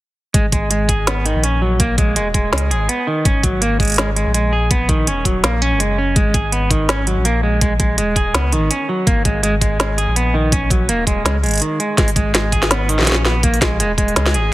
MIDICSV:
0, 0, Header, 1, 4, 480
1, 0, Start_track
1, 0, Key_signature, 5, "minor"
1, 0, Tempo, 363636
1, 453, Time_signature, 4, 2, 24, 8
1, 19186, End_track
2, 0, Start_track
2, 0, Title_t, "Clean electric guitar"
2, 0, Program_c, 0, 27
2, 453, Note_on_c, 0, 56, 93
2, 599, Note_off_c, 0, 56, 0
2, 698, Note_on_c, 0, 56, 69
2, 914, Note_off_c, 0, 56, 0
2, 937, Note_on_c, 0, 56, 68
2, 1164, Note_off_c, 0, 56, 0
2, 1176, Note_on_c, 0, 68, 68
2, 1392, Note_off_c, 0, 68, 0
2, 1420, Note_on_c, 0, 59, 76
2, 1646, Note_off_c, 0, 59, 0
2, 1657, Note_on_c, 0, 51, 95
2, 1884, Note_off_c, 0, 51, 0
2, 1898, Note_on_c, 0, 61, 72
2, 2113, Note_off_c, 0, 61, 0
2, 2135, Note_on_c, 0, 54, 70
2, 2363, Note_off_c, 0, 54, 0
2, 2375, Note_on_c, 0, 58, 98
2, 2592, Note_off_c, 0, 58, 0
2, 2615, Note_on_c, 0, 56, 73
2, 2832, Note_off_c, 0, 56, 0
2, 2853, Note_on_c, 0, 56, 94
2, 2999, Note_off_c, 0, 56, 0
2, 3092, Note_on_c, 0, 56, 70
2, 3311, Note_off_c, 0, 56, 0
2, 3333, Note_on_c, 0, 56, 78
2, 3562, Note_off_c, 0, 56, 0
2, 3574, Note_on_c, 0, 68, 72
2, 3791, Note_off_c, 0, 68, 0
2, 3811, Note_on_c, 0, 59, 77
2, 4041, Note_off_c, 0, 59, 0
2, 4053, Note_on_c, 0, 51, 92
2, 4282, Note_off_c, 0, 51, 0
2, 4296, Note_on_c, 0, 61, 81
2, 4513, Note_off_c, 0, 61, 0
2, 4532, Note_on_c, 0, 54, 74
2, 4762, Note_off_c, 0, 54, 0
2, 4771, Note_on_c, 0, 58, 94
2, 4990, Note_off_c, 0, 58, 0
2, 5011, Note_on_c, 0, 56, 72
2, 5230, Note_off_c, 0, 56, 0
2, 5253, Note_on_c, 0, 56, 101
2, 5399, Note_off_c, 0, 56, 0
2, 5495, Note_on_c, 0, 56, 75
2, 5712, Note_off_c, 0, 56, 0
2, 5732, Note_on_c, 0, 56, 75
2, 5961, Note_off_c, 0, 56, 0
2, 5973, Note_on_c, 0, 68, 70
2, 6191, Note_off_c, 0, 68, 0
2, 6216, Note_on_c, 0, 59, 79
2, 6444, Note_off_c, 0, 59, 0
2, 6453, Note_on_c, 0, 51, 98
2, 6682, Note_off_c, 0, 51, 0
2, 6697, Note_on_c, 0, 61, 74
2, 6913, Note_off_c, 0, 61, 0
2, 6938, Note_on_c, 0, 54, 72
2, 7165, Note_off_c, 0, 54, 0
2, 7175, Note_on_c, 0, 58, 97
2, 7392, Note_off_c, 0, 58, 0
2, 7414, Note_on_c, 0, 61, 96
2, 7643, Note_off_c, 0, 61, 0
2, 7653, Note_on_c, 0, 56, 70
2, 7882, Note_off_c, 0, 56, 0
2, 7899, Note_on_c, 0, 61, 70
2, 8114, Note_off_c, 0, 61, 0
2, 8132, Note_on_c, 0, 56, 79
2, 8361, Note_off_c, 0, 56, 0
2, 8373, Note_on_c, 0, 68, 67
2, 8591, Note_off_c, 0, 68, 0
2, 8611, Note_on_c, 0, 59, 69
2, 8841, Note_off_c, 0, 59, 0
2, 8850, Note_on_c, 0, 51, 92
2, 9081, Note_off_c, 0, 51, 0
2, 9093, Note_on_c, 0, 61, 82
2, 9311, Note_off_c, 0, 61, 0
2, 9334, Note_on_c, 0, 54, 70
2, 9562, Note_off_c, 0, 54, 0
2, 9571, Note_on_c, 0, 58, 97
2, 9790, Note_off_c, 0, 58, 0
2, 9811, Note_on_c, 0, 56, 72
2, 10030, Note_off_c, 0, 56, 0
2, 10052, Note_on_c, 0, 56, 96
2, 10198, Note_off_c, 0, 56, 0
2, 10293, Note_on_c, 0, 56, 73
2, 10511, Note_off_c, 0, 56, 0
2, 10534, Note_on_c, 0, 56, 75
2, 10763, Note_off_c, 0, 56, 0
2, 10773, Note_on_c, 0, 68, 70
2, 10991, Note_off_c, 0, 68, 0
2, 11013, Note_on_c, 0, 59, 84
2, 11242, Note_off_c, 0, 59, 0
2, 11254, Note_on_c, 0, 51, 95
2, 11483, Note_off_c, 0, 51, 0
2, 11492, Note_on_c, 0, 61, 72
2, 11711, Note_off_c, 0, 61, 0
2, 11733, Note_on_c, 0, 54, 74
2, 11962, Note_off_c, 0, 54, 0
2, 11968, Note_on_c, 0, 58, 96
2, 12189, Note_off_c, 0, 58, 0
2, 12211, Note_on_c, 0, 56, 71
2, 12430, Note_off_c, 0, 56, 0
2, 12449, Note_on_c, 0, 56, 97
2, 12597, Note_off_c, 0, 56, 0
2, 12689, Note_on_c, 0, 56, 70
2, 12909, Note_off_c, 0, 56, 0
2, 13173, Note_on_c, 0, 68, 77
2, 13391, Note_off_c, 0, 68, 0
2, 13414, Note_on_c, 0, 59, 74
2, 13643, Note_off_c, 0, 59, 0
2, 13651, Note_on_c, 0, 51, 101
2, 13881, Note_off_c, 0, 51, 0
2, 13893, Note_on_c, 0, 61, 80
2, 14111, Note_off_c, 0, 61, 0
2, 14131, Note_on_c, 0, 54, 73
2, 14361, Note_off_c, 0, 54, 0
2, 14374, Note_on_c, 0, 58, 96
2, 14592, Note_off_c, 0, 58, 0
2, 14611, Note_on_c, 0, 56, 70
2, 14830, Note_off_c, 0, 56, 0
2, 14851, Note_on_c, 0, 56, 97
2, 14998, Note_off_c, 0, 56, 0
2, 15092, Note_on_c, 0, 56, 72
2, 15311, Note_off_c, 0, 56, 0
2, 15330, Note_on_c, 0, 51, 70
2, 15550, Note_off_c, 0, 51, 0
2, 15574, Note_on_c, 0, 56, 71
2, 15791, Note_off_c, 0, 56, 0
2, 15812, Note_on_c, 0, 56, 101
2, 15958, Note_off_c, 0, 56, 0
2, 16052, Note_on_c, 0, 56, 74
2, 16271, Note_off_c, 0, 56, 0
2, 16292, Note_on_c, 0, 56, 71
2, 16522, Note_off_c, 0, 56, 0
2, 16533, Note_on_c, 0, 68, 74
2, 16751, Note_off_c, 0, 68, 0
2, 16778, Note_on_c, 0, 59, 83
2, 17004, Note_off_c, 0, 59, 0
2, 17017, Note_on_c, 0, 51, 98
2, 17244, Note_off_c, 0, 51, 0
2, 17257, Note_on_c, 0, 61, 73
2, 17473, Note_off_c, 0, 61, 0
2, 17495, Note_on_c, 0, 59, 71
2, 17712, Note_off_c, 0, 59, 0
2, 17733, Note_on_c, 0, 58, 96
2, 17951, Note_off_c, 0, 58, 0
2, 17975, Note_on_c, 0, 56, 71
2, 18192, Note_off_c, 0, 56, 0
2, 18214, Note_on_c, 0, 56, 99
2, 18359, Note_off_c, 0, 56, 0
2, 18451, Note_on_c, 0, 56, 75
2, 18670, Note_off_c, 0, 56, 0
2, 18695, Note_on_c, 0, 56, 83
2, 18923, Note_off_c, 0, 56, 0
2, 18936, Note_on_c, 0, 68, 78
2, 19153, Note_off_c, 0, 68, 0
2, 19186, End_track
3, 0, Start_track
3, 0, Title_t, "Sub bass"
3, 0, Program_c, 1, 38
3, 451, Note_on_c, 1, 32, 98
3, 1766, Note_off_c, 1, 32, 0
3, 1783, Note_on_c, 1, 34, 80
3, 2853, Note_on_c, 1, 27, 98
3, 2872, Note_off_c, 1, 34, 0
3, 3319, Note_off_c, 1, 27, 0
3, 3332, Note_on_c, 1, 37, 83
3, 3571, Note_on_c, 1, 32, 92
3, 3591, Note_off_c, 1, 37, 0
3, 3794, Note_off_c, 1, 32, 0
3, 4293, Note_on_c, 1, 32, 100
3, 5607, Note_off_c, 1, 32, 0
3, 5628, Note_on_c, 1, 34, 77
3, 6696, Note_on_c, 1, 27, 94
3, 6716, Note_off_c, 1, 34, 0
3, 7160, Note_off_c, 1, 27, 0
3, 7174, Note_on_c, 1, 34, 85
3, 7542, Note_on_c, 1, 30, 103
3, 7561, Note_off_c, 1, 34, 0
3, 8118, Note_off_c, 1, 30, 0
3, 8130, Note_on_c, 1, 32, 101
3, 9446, Note_off_c, 1, 32, 0
3, 9459, Note_on_c, 1, 34, 81
3, 10529, Note_on_c, 1, 27, 99
3, 10549, Note_off_c, 1, 34, 0
3, 10997, Note_off_c, 1, 27, 0
3, 11007, Note_on_c, 1, 37, 83
3, 11248, Note_on_c, 1, 32, 88
3, 11268, Note_off_c, 1, 37, 0
3, 11473, Note_off_c, 1, 32, 0
3, 11971, Note_on_c, 1, 32, 99
3, 13286, Note_off_c, 1, 32, 0
3, 13301, Note_on_c, 1, 34, 78
3, 14370, Note_on_c, 1, 27, 91
3, 14390, Note_off_c, 1, 34, 0
3, 14837, Note_off_c, 1, 27, 0
3, 14847, Note_on_c, 1, 37, 83
3, 15089, Note_on_c, 1, 32, 91
3, 15109, Note_off_c, 1, 37, 0
3, 15314, Note_off_c, 1, 32, 0
3, 15812, Note_on_c, 1, 32, 98
3, 17127, Note_off_c, 1, 32, 0
3, 17137, Note_on_c, 1, 34, 82
3, 18209, Note_on_c, 1, 27, 94
3, 18228, Note_off_c, 1, 34, 0
3, 18677, Note_off_c, 1, 27, 0
3, 18690, Note_on_c, 1, 37, 84
3, 18926, Note_on_c, 1, 32, 94
3, 18946, Note_off_c, 1, 37, 0
3, 19152, Note_off_c, 1, 32, 0
3, 19186, End_track
4, 0, Start_track
4, 0, Title_t, "Drums"
4, 451, Note_on_c, 9, 36, 111
4, 453, Note_on_c, 9, 42, 77
4, 583, Note_off_c, 9, 36, 0
4, 585, Note_off_c, 9, 42, 0
4, 692, Note_on_c, 9, 36, 97
4, 693, Note_on_c, 9, 42, 61
4, 824, Note_off_c, 9, 36, 0
4, 825, Note_off_c, 9, 42, 0
4, 932, Note_on_c, 9, 42, 81
4, 1064, Note_off_c, 9, 42, 0
4, 1172, Note_on_c, 9, 36, 59
4, 1175, Note_on_c, 9, 42, 61
4, 1304, Note_off_c, 9, 36, 0
4, 1307, Note_off_c, 9, 42, 0
4, 1415, Note_on_c, 9, 38, 109
4, 1415, Note_on_c, 9, 42, 75
4, 1547, Note_off_c, 9, 38, 0
4, 1547, Note_off_c, 9, 42, 0
4, 1658, Note_on_c, 9, 42, 62
4, 1790, Note_off_c, 9, 42, 0
4, 1895, Note_on_c, 9, 42, 80
4, 2027, Note_off_c, 9, 42, 0
4, 2373, Note_on_c, 9, 36, 116
4, 2375, Note_on_c, 9, 42, 76
4, 2505, Note_off_c, 9, 36, 0
4, 2507, Note_off_c, 9, 42, 0
4, 2612, Note_on_c, 9, 36, 103
4, 2615, Note_on_c, 9, 42, 65
4, 2744, Note_off_c, 9, 36, 0
4, 2747, Note_off_c, 9, 42, 0
4, 2853, Note_on_c, 9, 42, 78
4, 2985, Note_off_c, 9, 42, 0
4, 3093, Note_on_c, 9, 36, 60
4, 3096, Note_on_c, 9, 42, 61
4, 3225, Note_off_c, 9, 36, 0
4, 3228, Note_off_c, 9, 42, 0
4, 3334, Note_on_c, 9, 38, 116
4, 3402, Note_on_c, 9, 42, 76
4, 3466, Note_off_c, 9, 38, 0
4, 3534, Note_off_c, 9, 42, 0
4, 3580, Note_on_c, 9, 42, 65
4, 3712, Note_off_c, 9, 42, 0
4, 3817, Note_on_c, 9, 42, 83
4, 3949, Note_off_c, 9, 42, 0
4, 4293, Note_on_c, 9, 36, 120
4, 4296, Note_on_c, 9, 42, 73
4, 4425, Note_off_c, 9, 36, 0
4, 4428, Note_off_c, 9, 42, 0
4, 4534, Note_on_c, 9, 36, 104
4, 4538, Note_on_c, 9, 42, 61
4, 4666, Note_off_c, 9, 36, 0
4, 4670, Note_off_c, 9, 42, 0
4, 4776, Note_on_c, 9, 42, 80
4, 4908, Note_off_c, 9, 42, 0
4, 5014, Note_on_c, 9, 36, 58
4, 5019, Note_on_c, 9, 42, 28
4, 5050, Note_off_c, 9, 42, 0
4, 5050, Note_on_c, 9, 42, 31
4, 5081, Note_off_c, 9, 42, 0
4, 5081, Note_on_c, 9, 42, 36
4, 5116, Note_off_c, 9, 42, 0
4, 5116, Note_on_c, 9, 42, 39
4, 5144, Note_off_c, 9, 42, 0
4, 5144, Note_on_c, 9, 42, 46
4, 5146, Note_off_c, 9, 36, 0
4, 5174, Note_off_c, 9, 42, 0
4, 5174, Note_on_c, 9, 42, 51
4, 5203, Note_off_c, 9, 42, 0
4, 5203, Note_on_c, 9, 42, 55
4, 5228, Note_off_c, 9, 42, 0
4, 5228, Note_on_c, 9, 42, 57
4, 5257, Note_off_c, 9, 42, 0
4, 5257, Note_on_c, 9, 38, 116
4, 5257, Note_on_c, 9, 42, 75
4, 5389, Note_off_c, 9, 38, 0
4, 5389, Note_off_c, 9, 42, 0
4, 5498, Note_on_c, 9, 42, 64
4, 5630, Note_off_c, 9, 42, 0
4, 5735, Note_on_c, 9, 42, 77
4, 5867, Note_off_c, 9, 42, 0
4, 6213, Note_on_c, 9, 36, 117
4, 6215, Note_on_c, 9, 42, 73
4, 6345, Note_off_c, 9, 36, 0
4, 6347, Note_off_c, 9, 42, 0
4, 6453, Note_on_c, 9, 36, 97
4, 6454, Note_on_c, 9, 42, 58
4, 6585, Note_off_c, 9, 36, 0
4, 6586, Note_off_c, 9, 42, 0
4, 6696, Note_on_c, 9, 42, 73
4, 6828, Note_off_c, 9, 42, 0
4, 6933, Note_on_c, 9, 36, 62
4, 6936, Note_on_c, 9, 42, 59
4, 7065, Note_off_c, 9, 36, 0
4, 7068, Note_off_c, 9, 42, 0
4, 7177, Note_on_c, 9, 38, 116
4, 7177, Note_on_c, 9, 42, 75
4, 7309, Note_off_c, 9, 38, 0
4, 7309, Note_off_c, 9, 42, 0
4, 7417, Note_on_c, 9, 42, 60
4, 7549, Note_off_c, 9, 42, 0
4, 7657, Note_on_c, 9, 42, 73
4, 7789, Note_off_c, 9, 42, 0
4, 8131, Note_on_c, 9, 36, 113
4, 8133, Note_on_c, 9, 42, 72
4, 8263, Note_off_c, 9, 36, 0
4, 8265, Note_off_c, 9, 42, 0
4, 8371, Note_on_c, 9, 36, 99
4, 8375, Note_on_c, 9, 42, 55
4, 8503, Note_off_c, 9, 36, 0
4, 8507, Note_off_c, 9, 42, 0
4, 8613, Note_on_c, 9, 42, 74
4, 8745, Note_off_c, 9, 42, 0
4, 8851, Note_on_c, 9, 36, 58
4, 8853, Note_on_c, 9, 42, 57
4, 8983, Note_off_c, 9, 36, 0
4, 8985, Note_off_c, 9, 42, 0
4, 9094, Note_on_c, 9, 38, 117
4, 9094, Note_on_c, 9, 42, 70
4, 9226, Note_off_c, 9, 38, 0
4, 9226, Note_off_c, 9, 42, 0
4, 9332, Note_on_c, 9, 42, 59
4, 9464, Note_off_c, 9, 42, 0
4, 9571, Note_on_c, 9, 42, 74
4, 9703, Note_off_c, 9, 42, 0
4, 10051, Note_on_c, 9, 36, 110
4, 10051, Note_on_c, 9, 42, 75
4, 10183, Note_off_c, 9, 36, 0
4, 10183, Note_off_c, 9, 42, 0
4, 10291, Note_on_c, 9, 36, 92
4, 10291, Note_on_c, 9, 42, 58
4, 10423, Note_off_c, 9, 36, 0
4, 10423, Note_off_c, 9, 42, 0
4, 10533, Note_on_c, 9, 42, 75
4, 10665, Note_off_c, 9, 42, 0
4, 10770, Note_on_c, 9, 36, 56
4, 10776, Note_on_c, 9, 42, 57
4, 10902, Note_off_c, 9, 36, 0
4, 10908, Note_off_c, 9, 42, 0
4, 11015, Note_on_c, 9, 38, 112
4, 11015, Note_on_c, 9, 42, 72
4, 11147, Note_off_c, 9, 38, 0
4, 11147, Note_off_c, 9, 42, 0
4, 11253, Note_on_c, 9, 42, 58
4, 11385, Note_off_c, 9, 42, 0
4, 11492, Note_on_c, 9, 42, 75
4, 11624, Note_off_c, 9, 42, 0
4, 11971, Note_on_c, 9, 36, 110
4, 11975, Note_on_c, 9, 42, 72
4, 12103, Note_off_c, 9, 36, 0
4, 12107, Note_off_c, 9, 42, 0
4, 12211, Note_on_c, 9, 36, 91
4, 12213, Note_on_c, 9, 42, 58
4, 12343, Note_off_c, 9, 36, 0
4, 12345, Note_off_c, 9, 42, 0
4, 12454, Note_on_c, 9, 42, 75
4, 12586, Note_off_c, 9, 42, 0
4, 12691, Note_on_c, 9, 36, 58
4, 12693, Note_on_c, 9, 42, 59
4, 12823, Note_off_c, 9, 36, 0
4, 12825, Note_off_c, 9, 42, 0
4, 12934, Note_on_c, 9, 38, 109
4, 12934, Note_on_c, 9, 42, 77
4, 13066, Note_off_c, 9, 38, 0
4, 13066, Note_off_c, 9, 42, 0
4, 13175, Note_on_c, 9, 42, 62
4, 13307, Note_off_c, 9, 42, 0
4, 13416, Note_on_c, 9, 42, 73
4, 13548, Note_off_c, 9, 42, 0
4, 13890, Note_on_c, 9, 36, 106
4, 13894, Note_on_c, 9, 42, 72
4, 14022, Note_off_c, 9, 36, 0
4, 14026, Note_off_c, 9, 42, 0
4, 14130, Note_on_c, 9, 36, 95
4, 14136, Note_on_c, 9, 42, 62
4, 14262, Note_off_c, 9, 36, 0
4, 14268, Note_off_c, 9, 42, 0
4, 14373, Note_on_c, 9, 42, 80
4, 14505, Note_off_c, 9, 42, 0
4, 14610, Note_on_c, 9, 36, 55
4, 14616, Note_on_c, 9, 42, 60
4, 14742, Note_off_c, 9, 36, 0
4, 14748, Note_off_c, 9, 42, 0
4, 14858, Note_on_c, 9, 38, 111
4, 14858, Note_on_c, 9, 42, 75
4, 14990, Note_off_c, 9, 38, 0
4, 14990, Note_off_c, 9, 42, 0
4, 15095, Note_on_c, 9, 42, 28
4, 15128, Note_off_c, 9, 42, 0
4, 15128, Note_on_c, 9, 42, 31
4, 15161, Note_off_c, 9, 42, 0
4, 15161, Note_on_c, 9, 42, 35
4, 15191, Note_off_c, 9, 42, 0
4, 15191, Note_on_c, 9, 42, 38
4, 15228, Note_off_c, 9, 42, 0
4, 15228, Note_on_c, 9, 42, 46
4, 15252, Note_off_c, 9, 42, 0
4, 15252, Note_on_c, 9, 42, 52
4, 15280, Note_off_c, 9, 42, 0
4, 15280, Note_on_c, 9, 42, 55
4, 15308, Note_off_c, 9, 42, 0
4, 15308, Note_on_c, 9, 42, 60
4, 15334, Note_off_c, 9, 42, 0
4, 15334, Note_on_c, 9, 42, 77
4, 15466, Note_off_c, 9, 42, 0
4, 15575, Note_on_c, 9, 42, 38
4, 15707, Note_off_c, 9, 42, 0
4, 15812, Note_on_c, 9, 36, 114
4, 15814, Note_on_c, 9, 40, 53
4, 15814, Note_on_c, 9, 42, 80
4, 15944, Note_off_c, 9, 36, 0
4, 15944, Note_on_c, 9, 46, 62
4, 15946, Note_off_c, 9, 40, 0
4, 15946, Note_off_c, 9, 42, 0
4, 16051, Note_on_c, 9, 36, 105
4, 16056, Note_on_c, 9, 42, 62
4, 16076, Note_off_c, 9, 46, 0
4, 16183, Note_off_c, 9, 36, 0
4, 16188, Note_off_c, 9, 42, 0
4, 16296, Note_on_c, 9, 40, 83
4, 16296, Note_on_c, 9, 42, 81
4, 16428, Note_off_c, 9, 40, 0
4, 16428, Note_off_c, 9, 42, 0
4, 16531, Note_on_c, 9, 36, 59
4, 16534, Note_on_c, 9, 42, 61
4, 16663, Note_off_c, 9, 36, 0
4, 16665, Note_on_c, 9, 40, 54
4, 16665, Note_on_c, 9, 46, 36
4, 16666, Note_off_c, 9, 42, 0
4, 16774, Note_on_c, 9, 38, 112
4, 16774, Note_on_c, 9, 42, 75
4, 16797, Note_off_c, 9, 40, 0
4, 16797, Note_off_c, 9, 46, 0
4, 16906, Note_off_c, 9, 38, 0
4, 16906, Note_off_c, 9, 42, 0
4, 17016, Note_on_c, 9, 46, 64
4, 17142, Note_on_c, 9, 40, 37
4, 17148, Note_off_c, 9, 46, 0
4, 17169, Note_off_c, 9, 40, 0
4, 17169, Note_on_c, 9, 40, 44
4, 17197, Note_off_c, 9, 40, 0
4, 17197, Note_on_c, 9, 40, 48
4, 17224, Note_off_c, 9, 40, 0
4, 17224, Note_on_c, 9, 40, 51
4, 17253, Note_off_c, 9, 40, 0
4, 17253, Note_on_c, 9, 40, 57
4, 17253, Note_on_c, 9, 42, 81
4, 17285, Note_off_c, 9, 40, 0
4, 17285, Note_on_c, 9, 40, 61
4, 17317, Note_off_c, 9, 40, 0
4, 17317, Note_on_c, 9, 40, 69
4, 17350, Note_off_c, 9, 40, 0
4, 17350, Note_on_c, 9, 40, 70
4, 17385, Note_off_c, 9, 42, 0
4, 17482, Note_off_c, 9, 40, 0
4, 17494, Note_on_c, 9, 40, 56
4, 17626, Note_off_c, 9, 40, 0
4, 17731, Note_on_c, 9, 36, 118
4, 17736, Note_on_c, 9, 42, 82
4, 17863, Note_off_c, 9, 36, 0
4, 17868, Note_off_c, 9, 42, 0
4, 17868, Note_on_c, 9, 46, 60
4, 17971, Note_on_c, 9, 36, 103
4, 17974, Note_on_c, 9, 40, 79
4, 17974, Note_on_c, 9, 42, 62
4, 18000, Note_off_c, 9, 46, 0
4, 18103, Note_off_c, 9, 36, 0
4, 18106, Note_off_c, 9, 40, 0
4, 18106, Note_off_c, 9, 42, 0
4, 18217, Note_on_c, 9, 42, 80
4, 18349, Note_off_c, 9, 42, 0
4, 18451, Note_on_c, 9, 36, 58
4, 18457, Note_on_c, 9, 42, 64
4, 18583, Note_off_c, 9, 36, 0
4, 18588, Note_on_c, 9, 46, 35
4, 18589, Note_off_c, 9, 42, 0
4, 18694, Note_on_c, 9, 38, 113
4, 18694, Note_on_c, 9, 42, 81
4, 18720, Note_off_c, 9, 46, 0
4, 18826, Note_off_c, 9, 38, 0
4, 18826, Note_off_c, 9, 42, 0
4, 18827, Note_on_c, 9, 40, 74
4, 18933, Note_on_c, 9, 42, 67
4, 18959, Note_off_c, 9, 40, 0
4, 19065, Note_off_c, 9, 42, 0
4, 19186, End_track
0, 0, End_of_file